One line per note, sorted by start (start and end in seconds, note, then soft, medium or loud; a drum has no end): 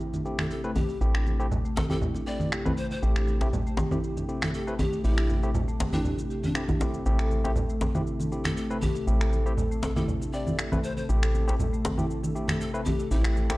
0.00 0.99 A1 medium
0.00 13.57 C3 medium
0.00 13.57 A3 medium
0.00 7.02 G4 medium
0.00 shaker soft
0.14 0.24 D4 medium
0.14 muted conga medium
0.14 high conga medium
0.14 shaker medium
0.25 0.37 A3 medium
0.25 0.61 A3 medium
0.25 0.61 C4 medium
0.25 0.61 E4 medium
0.25 0.61 G4 medium
0.25 shaker soft
0.39 0.50 A3 medium
0.39 0.46 A4 medium
0.39 finger snap medium
0.39 high conga medium
0.39 shaker soft
0.50 0.59 A4 medium
0.50 muted conga soft
0.50 shaker medium
0.64 0.70 A3 medium
0.64 0.70 C4 medium
0.64 0.70 E4 medium
0.64 0.70 B4 loud
0.64 shaker soft
0.76 0.98 G4 medium
0.76 djembe tone medium
0.76 high conga medium
0.76 shaker medium
0.89 muted conga soft
0.89 shaker soft
1.01 3.00 A1 medium
1.01 1.36 A3 medium
1.01 1.13 A3 medium
1.01 1.37 C4 medium
1.01 1.37 E4 medium
1.01 1.36 G4 medium
1.01 shaker medium
1.14 1.25 D4 medium
1.14 finger snap medium
1.14 shaker soft
1.26 1.38 A3 medium
1.26 muted conga medium
1.26 shaker medium
1.40 1.46 A3 medium
1.40 1.51 A3 medium
1.40 1.46 C4 medium
1.40 1.46 E4 medium
1.40 1.46 G4 medium
1.40 shaker medium
1.51 low conga medium
1.51 shaker medium
1.65 1.71 A3 medium
1.65 shaker medium
1.76 1.90 C4 medium
1.76 1.85 A4 medium
1.76 muted conga soft
1.76 djembe slap medium
1.76 high conga medium
1.76 shaker medium
1.90 1.96 A3 medium
1.90 1.96 C4 medium
1.90 1.96 E4 medium
1.90 2.01 E4 medium
1.90 1.96 G4 medium
1.90 1.98 A4 medium
1.90 high conga loud
1.90 shaker soft
2.02 low conga medium
2.02 shaker medium
2.14 2.26 D4 medium
2.14 muted conga soft
2.14 shaker medium
2.27 2.63 A3 medium
2.27 2.39 A3 medium
2.27 2.62 C4 medium
2.27 2.62 E4 medium
2.27 2.62 G4 medium
2.27 2.50 D5 medium
2.27 shaker soft
2.40 2.52 A3 medium
2.40 high conga medium
2.40 shaker medium
2.52 finger snap medium
2.52 muted conga soft
2.52 shaker medium
2.65 2.72 A3 medium
2.65 2.72 C4 medium
2.65 2.72 E4 medium
2.65 2.72 B4 loud
2.65 high conga loud
2.65 djembe tone medium
2.65 shaker soft
2.78 2.86 C5 medium
2.78 shaker medium
2.91 2.99 C5 medium
2.91 muted conga soft
2.91 shaker soft
3.03 5.02 A1 medium
3.03 3.38 A3 medium
3.03 3.15 A3 medium
3.03 3.38 C4 medium
3.03 3.38 E4 medium
3.03 3.38 G4 medium
3.03 shaker medium
3.16 3.27 D4 medium
3.16 finger snap medium
3.16 shaker medium
3.27 3.40 A3 medium
3.27 muted conga soft
3.27 shaker medium
3.41 3.47 A3 medium
3.41 3.47 C4 medium
3.41 3.47 E4 medium
3.41 3.47 G4 loud
3.41 djembe slap medium
3.41 shaker medium
3.53 low conga loud
3.53 shaker medium
3.67 3.73 A3 medium
3.67 shaker medium
3.77 3.91 C4 medium
3.77 djembe slap loud
3.77 muted conga soft
3.77 high conga medium
3.77 shaker medium
3.91 3.98 A3 medium
3.91 3.98 C4 medium
3.91 3.98 E4 medium
3.91 4.03 E4 medium
3.91 3.98 G4 medium
3.91 high conga loud
3.91 shaker medium
4.04 shaker medium
4.17 4.28 D4 medium
4.17 muted conga soft
4.17 high conga medium
4.17 shaker medium
4.29 4.64 A3 medium
4.29 4.41 A3 medium
4.29 4.64 C4 medium
4.29 4.64 E4 medium
4.29 4.64 G4 medium
4.29 shaker medium
4.42 4.53 A3 medium
4.42 4.50 A4 medium
4.42 finger snap medium
4.42 high conga medium
4.42 shaker medium
4.54 4.63 A4 medium
4.54 muted conga soft
4.54 shaker medium
4.67 4.74 A3 loud
4.67 4.73 A3 medium
4.67 4.73 C4 medium
4.67 4.73 E4 medium
4.67 4.73 B4 loud
4.67 shaker soft
4.79 5.02 G4 medium
4.79 high conga medium
4.79 djembe tone medium
4.79 shaker medium
4.93 muted conga soft
4.93 shaker medium
5.04 7.04 A1 medium
5.04 5.40 A3 medium
5.04 5.17 A3 medium
5.04 5.40 C4 medium
5.04 5.43 E4 medium
5.04 5.40 E4 medium
5.04 5.40 G4 medium
5.04 shaker medium
5.18 5.28 D4 medium
5.18 finger snap medium
5.18 shaker soft
5.29 5.42 A3 medium
5.29 muted conga soft
5.29 high conga medium
5.29 shaker soft
5.43 5.54 A3 medium
5.43 5.49 A3 medium
5.43 5.49 C4 medium
5.43 5.49 E4 medium
5.43 5.49 G4 loud
5.43 shaker medium
5.55 low conga loud
5.55 shaker medium
5.68 5.75 A3 medium
5.68 shaker medium
5.80 5.93 C4 medium
5.80 muted conga soft
5.80 djembe slap loud
5.80 high conga medium
5.80 shaker medium
5.93 6.00 A3 medium
5.93 6.00 C4 medium
5.93 6.15 D4 medium
5.93 6.04 E4 medium
5.93 6.00 E4 medium
5.93 6.00 G4 medium
5.93 high conga loud
5.93 shaker soft
6.05 low conga medium
6.05 shaker medium
6.18 6.29 D4 medium
6.18 muted conga soft
6.18 shaker medium
6.30 6.43 G4 medium
6.30 shaker medium
6.44 6.54 C4 medium
6.44 6.81 D4 medium
6.44 high conga medium
6.44 shaker soft
6.55 6.63 A3 medium
6.55 6.63 C4 medium
6.55 6.62 E4 medium
6.55 6.62 G4 medium
6.55 finger snap medium
6.55 muted conga soft
6.55 shaker medium
6.68 6.80 E4 medium
6.68 high conga medium
6.68 djembe tone medium
6.68 shaker soft
6.81 7.03 A3 medium
6.81 7.03 C4 medium
6.81 7.03 E4 medium
6.81 7.03 G4 medium
6.81 djembe slap medium
6.81 shaker medium
6.94 muted conga soft
6.94 shaker soft
7.06 9.05 A1 medium
7.06 7.18 A3 medium
7.06 7.42 A3 medium
7.06 7.41 C4 medium
7.06 7.42 E4 medium
7.06 7.42 G4 medium
7.06 13.57 A4 medium
7.06 shaker medium
7.19 7.31 A4 loud
7.19 finger snap medium
7.19 shaker soft
7.31 7.43 A3 medium
7.31 muted conga soft
7.31 shaker soft
7.44 7.51 A3 medium
7.44 7.56 A3 medium
7.44 7.51 C4 medium
7.44 7.50 E4 medium
7.44 7.51 G4 loud
7.44 djembe slap medium
7.44 shaker soft
7.56 low conga loud
7.56 shaker medium
7.70 7.76 A3 medium
7.70 shaker soft
7.81 7.94 C4 medium
7.81 djembe slap loud
7.81 muted conga soft
7.81 high conga medium
7.81 shaker medium
7.95 8.01 A3 medium
7.95 8.01 C4 medium
7.95 8.06 E4 medium
7.95 8.01 E4 medium
7.95 8.01 G4 medium
7.95 high conga loud
7.95 shaker soft
8.07 shaker soft
8.20 8.31 D4 medium
8.20 muted conga soft
8.20 high conga medium
8.20 shaker medium
8.32 8.44 A3 medium
8.32 8.67 A3 medium
8.32 8.67 C4 medium
8.32 8.67 E4 medium
8.32 8.68 G4 medium
8.32 shaker medium
8.45 8.57 A3 medium
8.45 8.53 A4 medium
8.45 finger snap medium
8.45 high conga medium
8.45 shaker medium
8.57 8.66 A4 medium
8.57 muted conga soft
8.57 shaker medium
8.70 8.77 A3 medium
8.70 8.77 A3 loud
8.70 8.77 C4 medium
8.70 8.77 E4 medium
8.70 8.77 B4 loud
8.70 shaker soft
8.82 9.05 G4 medium
8.82 high conga medium
8.82 djembe tone medium
8.82 shaker medium
8.95 muted conga soft
8.95 shaker soft
9.07 11.07 A1 medium
9.07 9.43 A3 medium
9.07 9.20 A3 medium
9.07 9.43 C4 medium
9.07 9.43 E4 medium
9.07 9.43 G4 medium
9.07 shaker medium
9.21 9.32 A4 loud
9.21 finger snap medium
9.21 shaker soft
9.33 9.45 A3 medium
9.33 muted conga soft
9.33 shaker soft
9.46 9.52 A3 medium
9.46 9.57 A3 medium
9.46 9.52 C4 medium
9.46 9.52 E4 medium
9.46 9.52 G4 loud
9.46 shaker soft
9.57 low conga medium
9.57 shaker medium
9.71 9.78 A3 medium
9.71 shaker soft
9.83 9.96 C4 medium
9.83 9.92 A4 medium
9.83 djembe slap loud
9.83 muted conga soft
9.83 high conga medium
9.83 shaker medium
9.96 10.03 A3 medium
9.96 10.03 C4 medium
9.96 10.07 E4 medium
9.96 10.03 E4 medium
9.96 10.03 G4 medium
9.96 10.04 A4 medium
9.96 high conga medium
9.96 shaker soft
10.08 low conga medium
10.08 shaker soft
10.21 10.32 D4 medium
10.21 muted conga soft
10.21 shaker medium
10.33 10.46 A3 medium
10.33 10.69 A3 medium
10.33 10.69 C4 medium
10.33 10.69 E4 medium
10.33 10.69 G4 medium
10.33 10.56 D5 medium
10.33 shaker soft
10.47 10.58 A3 medium
10.47 high conga medium
10.47 shaker soft
10.58 finger snap medium
10.58 muted conga soft
10.58 shaker medium
10.72 10.79 A3 medium
10.72 10.78 A3 medium
10.72 10.78 C4 medium
10.72 10.78 E4 medium
10.72 10.78 B4 loud
10.72 high conga medium
10.72 djembe tone medium
10.72 shaker soft
10.84 10.93 C5 medium
10.84 shaker medium
10.97 11.05 C5 medium
10.97 muted conga soft
10.97 shaker soft
11.09 13.09 A1 medium
11.09 11.21 A3 medium
11.09 11.45 A3 medium
11.09 11.45 C4 medium
11.09 11.45 E4 medium
11.09 11.45 G4 medium
11.09 shaker medium
11.23 11.34 A4 medium
11.23 finger snap medium
11.23 shaker soft
11.34 11.47 A3 medium
11.34 muted conga soft
11.34 shaker soft
11.47 11.54 A3 medium
11.47 11.59 A3 medium
11.47 11.54 C4 medium
11.47 11.54 E4 medium
11.47 11.54 G4 loud
11.47 djembe slap medium
11.47 shaker soft
11.60 low conga loud
11.60 shaker medium
11.73 11.80 A3 medium
11.73 shaker soft
11.85 11.98 C4 medium
11.85 djembe slap loud
11.85 muted conga soft
11.85 high conga medium
11.85 shaker medium
11.98 12.04 A3 medium
11.98 12.04 C4 medium
11.98 12.04 E4 medium
11.98 12.09 E4 medium
11.98 12.04 G4 medium
11.98 high conga medium
11.98 shaker soft
12.11 shaker soft
12.23 12.34 D4 medium
12.23 muted conga soft
12.23 high conga medium
12.23 shaker medium
12.35 12.71 A3 medium
12.35 12.48 A3 medium
12.35 12.71 C4 medium
12.35 12.71 E4 medium
12.35 12.71 G4 medium
12.35 shaker soft
12.48 12.60 A3 medium
12.48 12.56 A4 medium
12.48 finger snap medium
12.48 high conga medium
12.48 shaker soft
12.60 12.69 A4 medium
12.60 muted conga soft
12.60 shaker medium
12.74 12.80 A3 medium
12.74 12.81 A3 loud
12.74 12.80 C4 medium
12.74 12.80 E4 medium
12.74 12.80 B4 loud
12.74 shaker soft
12.85 13.08 G4 medium
12.85 high conga medium
12.85 djembe tone medium
12.85 shaker medium
13.00 muted conga soft
13.00 shaker soft
13.11 13.57 A1 medium
13.11 13.23 A3 medium
13.11 13.47 A3 medium
13.11 13.47 C4 medium
13.11 13.50 E4 medium
13.11 13.47 E4 medium
13.11 13.47 G4 medium
13.11 djembe tone medium
13.11 shaker medium
13.24 13.36 A4 medium
13.24 finger snap medium
13.24 shaker soft
13.36 13.48 A3 medium
13.36 muted conga soft
13.36 shaker soft
13.50 13.56 A3 medium
13.50 13.57 A3 medium
13.50 13.56 C4 medium
13.50 13.56 E4 medium
13.50 13.56 G4 loud
13.50 finger snap medium
13.50 djembe slap medium
13.50 shaker soft